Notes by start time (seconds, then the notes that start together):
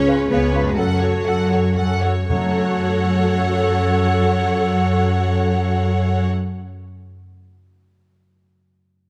Already playing: C#2 C#3 B3 C#4 F4 G#4 C#5
0.07 F4 B4 C#5 F5
0.30 C#2 B3 C#4 G#4 B4 C#5 F5
0.53 F4 B4 C#5 F5
0.60 F#2
0.64 G#3 A3 G#4
0.69 F#4
0.74 C#4 A4
0.78 F#2 F#3 F#4 A4 F#5
1.02 F#4 A4 C#5 F#5
1.26 F#2 C#4 A4 F#5
1.50 F#4 A4 C#5 F#5
1.77 F#2 C#4 A4 F#5
2.03 F#4 A4 C#5 F#5
2.29 F#2 F#3 C#4 F#4 A4 C#5 F#5
2.37 F#3
2.44 A3
2.51 F#4
2.57 A4
2.65 F#5